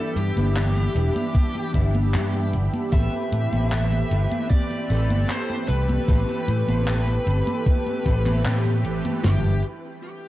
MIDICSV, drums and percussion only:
0, 0, Header, 1, 2, 480
1, 0, Start_track
1, 0, Tempo, 789474
1, 1779, Time_signature, 4, 2, 24, 8
1, 6250, End_track
2, 0, Start_track
2, 0, Title_t, "Drums"
2, 101, Note_on_c, 9, 42, 75
2, 161, Note_off_c, 9, 42, 0
2, 225, Note_on_c, 9, 42, 47
2, 225, Note_on_c, 9, 63, 55
2, 286, Note_off_c, 9, 42, 0
2, 286, Note_off_c, 9, 63, 0
2, 342, Note_on_c, 9, 39, 117
2, 342, Note_on_c, 9, 42, 73
2, 342, Note_on_c, 9, 63, 45
2, 403, Note_off_c, 9, 39, 0
2, 403, Note_off_c, 9, 42, 0
2, 403, Note_off_c, 9, 63, 0
2, 466, Note_on_c, 9, 42, 35
2, 466, Note_on_c, 9, 63, 29
2, 527, Note_off_c, 9, 42, 0
2, 527, Note_off_c, 9, 63, 0
2, 583, Note_on_c, 9, 42, 74
2, 643, Note_off_c, 9, 42, 0
2, 705, Note_on_c, 9, 42, 51
2, 705, Note_on_c, 9, 63, 53
2, 766, Note_off_c, 9, 42, 0
2, 766, Note_off_c, 9, 63, 0
2, 819, Note_on_c, 9, 36, 114
2, 821, Note_on_c, 9, 42, 78
2, 821, Note_on_c, 9, 63, 46
2, 880, Note_off_c, 9, 36, 0
2, 882, Note_off_c, 9, 42, 0
2, 882, Note_off_c, 9, 63, 0
2, 944, Note_on_c, 9, 42, 35
2, 944, Note_on_c, 9, 63, 27
2, 1005, Note_off_c, 9, 42, 0
2, 1005, Note_off_c, 9, 63, 0
2, 1059, Note_on_c, 9, 36, 61
2, 1060, Note_on_c, 9, 42, 78
2, 1120, Note_off_c, 9, 36, 0
2, 1121, Note_off_c, 9, 42, 0
2, 1184, Note_on_c, 9, 42, 50
2, 1184, Note_on_c, 9, 63, 57
2, 1245, Note_off_c, 9, 42, 0
2, 1245, Note_off_c, 9, 63, 0
2, 1301, Note_on_c, 9, 39, 113
2, 1301, Note_on_c, 9, 42, 81
2, 1301, Note_on_c, 9, 63, 47
2, 1362, Note_off_c, 9, 39, 0
2, 1362, Note_off_c, 9, 42, 0
2, 1362, Note_off_c, 9, 63, 0
2, 1424, Note_on_c, 9, 42, 36
2, 1424, Note_on_c, 9, 63, 28
2, 1484, Note_off_c, 9, 42, 0
2, 1484, Note_off_c, 9, 63, 0
2, 1541, Note_on_c, 9, 42, 78
2, 1601, Note_off_c, 9, 42, 0
2, 1663, Note_on_c, 9, 42, 51
2, 1663, Note_on_c, 9, 63, 53
2, 1724, Note_off_c, 9, 42, 0
2, 1724, Note_off_c, 9, 63, 0
2, 1779, Note_on_c, 9, 36, 113
2, 1781, Note_on_c, 9, 42, 74
2, 1781, Note_on_c, 9, 63, 47
2, 1840, Note_off_c, 9, 36, 0
2, 1842, Note_off_c, 9, 42, 0
2, 1842, Note_off_c, 9, 63, 0
2, 1903, Note_on_c, 9, 63, 27
2, 1964, Note_off_c, 9, 63, 0
2, 2022, Note_on_c, 9, 42, 78
2, 2083, Note_off_c, 9, 42, 0
2, 2145, Note_on_c, 9, 42, 52
2, 2145, Note_on_c, 9, 63, 55
2, 2205, Note_off_c, 9, 42, 0
2, 2205, Note_off_c, 9, 63, 0
2, 2262, Note_on_c, 9, 39, 119
2, 2262, Note_on_c, 9, 42, 77
2, 2262, Note_on_c, 9, 63, 47
2, 2323, Note_off_c, 9, 39, 0
2, 2323, Note_off_c, 9, 42, 0
2, 2323, Note_off_c, 9, 63, 0
2, 2385, Note_on_c, 9, 42, 36
2, 2385, Note_on_c, 9, 63, 29
2, 2446, Note_off_c, 9, 42, 0
2, 2446, Note_off_c, 9, 63, 0
2, 2501, Note_on_c, 9, 42, 74
2, 2562, Note_off_c, 9, 42, 0
2, 2624, Note_on_c, 9, 42, 50
2, 2624, Note_on_c, 9, 63, 56
2, 2685, Note_off_c, 9, 42, 0
2, 2685, Note_off_c, 9, 63, 0
2, 2739, Note_on_c, 9, 36, 115
2, 2741, Note_on_c, 9, 42, 79
2, 2741, Note_on_c, 9, 63, 50
2, 2799, Note_off_c, 9, 36, 0
2, 2802, Note_off_c, 9, 42, 0
2, 2802, Note_off_c, 9, 63, 0
2, 2863, Note_on_c, 9, 42, 34
2, 2863, Note_on_c, 9, 63, 28
2, 2924, Note_off_c, 9, 42, 0
2, 2924, Note_off_c, 9, 63, 0
2, 2980, Note_on_c, 9, 42, 78
2, 3041, Note_off_c, 9, 42, 0
2, 3103, Note_on_c, 9, 42, 51
2, 3103, Note_on_c, 9, 63, 57
2, 3164, Note_off_c, 9, 42, 0
2, 3164, Note_off_c, 9, 63, 0
2, 3220, Note_on_c, 9, 39, 117
2, 3220, Note_on_c, 9, 42, 76
2, 3220, Note_on_c, 9, 63, 49
2, 3281, Note_off_c, 9, 39, 0
2, 3281, Note_off_c, 9, 42, 0
2, 3281, Note_off_c, 9, 63, 0
2, 3344, Note_on_c, 9, 42, 37
2, 3344, Note_on_c, 9, 63, 30
2, 3404, Note_off_c, 9, 42, 0
2, 3404, Note_off_c, 9, 63, 0
2, 3460, Note_on_c, 9, 42, 76
2, 3521, Note_off_c, 9, 42, 0
2, 3583, Note_on_c, 9, 42, 52
2, 3583, Note_on_c, 9, 63, 58
2, 3644, Note_off_c, 9, 42, 0
2, 3644, Note_off_c, 9, 63, 0
2, 3699, Note_on_c, 9, 36, 119
2, 3700, Note_on_c, 9, 42, 77
2, 3700, Note_on_c, 9, 63, 47
2, 3760, Note_off_c, 9, 36, 0
2, 3761, Note_off_c, 9, 42, 0
2, 3761, Note_off_c, 9, 63, 0
2, 3824, Note_on_c, 9, 42, 37
2, 3824, Note_on_c, 9, 63, 29
2, 3885, Note_off_c, 9, 42, 0
2, 3885, Note_off_c, 9, 63, 0
2, 3941, Note_on_c, 9, 42, 78
2, 4002, Note_off_c, 9, 42, 0
2, 4064, Note_on_c, 9, 42, 52
2, 4064, Note_on_c, 9, 63, 59
2, 4125, Note_off_c, 9, 42, 0
2, 4125, Note_off_c, 9, 63, 0
2, 4181, Note_on_c, 9, 39, 116
2, 4181, Note_on_c, 9, 42, 84
2, 4181, Note_on_c, 9, 63, 51
2, 4241, Note_off_c, 9, 39, 0
2, 4241, Note_off_c, 9, 42, 0
2, 4241, Note_off_c, 9, 63, 0
2, 4303, Note_on_c, 9, 42, 40
2, 4303, Note_on_c, 9, 63, 30
2, 4364, Note_off_c, 9, 42, 0
2, 4364, Note_off_c, 9, 63, 0
2, 4420, Note_on_c, 9, 42, 78
2, 4481, Note_off_c, 9, 42, 0
2, 4543, Note_on_c, 9, 42, 55
2, 4543, Note_on_c, 9, 63, 56
2, 4604, Note_off_c, 9, 42, 0
2, 4604, Note_off_c, 9, 63, 0
2, 4659, Note_on_c, 9, 36, 115
2, 4659, Note_on_c, 9, 42, 78
2, 4659, Note_on_c, 9, 63, 49
2, 4720, Note_off_c, 9, 36, 0
2, 4720, Note_off_c, 9, 42, 0
2, 4720, Note_off_c, 9, 63, 0
2, 4782, Note_on_c, 9, 42, 38
2, 4782, Note_on_c, 9, 63, 28
2, 4843, Note_off_c, 9, 42, 0
2, 4843, Note_off_c, 9, 63, 0
2, 4899, Note_on_c, 9, 36, 63
2, 4899, Note_on_c, 9, 42, 83
2, 4960, Note_off_c, 9, 36, 0
2, 4960, Note_off_c, 9, 42, 0
2, 5022, Note_on_c, 9, 39, 36
2, 5022, Note_on_c, 9, 42, 54
2, 5022, Note_on_c, 9, 63, 63
2, 5083, Note_off_c, 9, 39, 0
2, 5083, Note_off_c, 9, 42, 0
2, 5083, Note_off_c, 9, 63, 0
2, 5139, Note_on_c, 9, 39, 115
2, 5139, Note_on_c, 9, 42, 81
2, 5139, Note_on_c, 9, 63, 51
2, 5200, Note_off_c, 9, 39, 0
2, 5200, Note_off_c, 9, 42, 0
2, 5200, Note_off_c, 9, 63, 0
2, 5262, Note_on_c, 9, 42, 39
2, 5262, Note_on_c, 9, 63, 31
2, 5323, Note_off_c, 9, 42, 0
2, 5323, Note_off_c, 9, 63, 0
2, 5379, Note_on_c, 9, 42, 85
2, 5440, Note_off_c, 9, 42, 0
2, 5502, Note_on_c, 9, 42, 54
2, 5502, Note_on_c, 9, 63, 57
2, 5563, Note_off_c, 9, 42, 0
2, 5563, Note_off_c, 9, 63, 0
2, 5619, Note_on_c, 9, 38, 100
2, 5619, Note_on_c, 9, 43, 102
2, 5680, Note_off_c, 9, 38, 0
2, 5680, Note_off_c, 9, 43, 0
2, 6250, End_track
0, 0, End_of_file